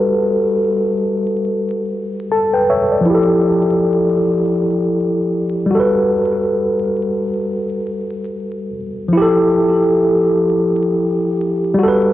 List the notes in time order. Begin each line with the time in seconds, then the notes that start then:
Already playing: G3 F#4 A4 B4
2.32 A4 A5
2.53 B4 G5
2.70 C#5 E5
2.92 D5
3.01 F3
3.05 E4
3.10 G4
3.14 A4
5.66 G3
5.71 F#4
5.75 A4
5.80 B4
9.08 F3
9.13 E4
9.17 G4
9.22 A4
11.74 G3
11.79 F#4
11.83 A4
11.88 B4